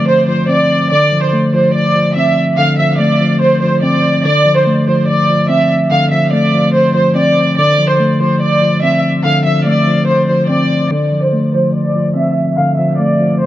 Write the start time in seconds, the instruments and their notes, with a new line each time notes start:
Already playing: tine electric piano D3 F3 A3 C4
0.08 violin section C5
0.28 tine electric piano F3, violin section C5
0.49 tine electric piano C4, violin section D5
0.91 tine electric piano D3, violin section D5
1.12 tine electric piano F3
1.22 violin section C5
1.33 tine electric piano A3
1.54 tine electric piano F3, violin section C5
1.74 violin section D5
1.95 tine electric piano F3
2.16 tine electric piano C4, violin section E5
2.57 tine electric piano D3, violin section F5
2.79 tine electric piano F3, violin section E5
2.99 tine electric piano A3, violin section D5
3.20 tine electric piano F3
3.42 violin section C5
3.62 tine electric piano F3, violin section C5
3.83 tine electric piano C4, violin section D5
4.24 tine electric piano D3, violin section D5
4.46 tine electric piano F3
4.56 violin section C5
4.67 tine electric piano A3
4.87 tine electric piano F3, violin section C5
5.08 violin section D5
5.29 tine electric piano F3
5.49 tine electric piano C4, violin section E5
5.91 tine electric piano D3, violin section F5
6.12 tine electric piano F3, violin section E5
6.33 tine electric piano A3, violin section D5
6.54 tine electric piano F3
6.75 violin section C5
6.95 tine electric piano F3, violin section C5
7.15 tine electric piano C4, violin section D5
7.58 tine electric piano D3, violin section D5
7.79 tine electric piano F3
7.89 violin section C5
8.00 tine electric piano A3
8.20 tine electric piano F3, violin section C5
8.41 violin section D5
8.62 tine electric piano F3
8.83 tine electric piano C4, violin section E5
9.25 tine electric piano D3, violin section F5
9.45 tine electric piano F3, violin section E5
9.66 tine electric piano A3, violin section D5
9.87 tine electric piano F3
10.08 violin section C5
10.29 tine electric piano F3, violin section C5
10.49 tine electric piano C4, violin section D5
10.91 tine electric piano D3, violin section D5
11.12 tine electric piano F3
11.23 violin section C5
11.33 tine electric piano A3
11.53 tine electric piano F3, violin section C5
11.75 violin section D5
11.96 tine electric piano F3
12.16 tine electric piano C4, violin section E5
12.58 tine electric piano D3, violin section F5
12.78 tine electric piano F3, violin section E5
13.00 tine electric piano A3, violin section D5
13.20 tine electric piano F3
13.41 violin section C5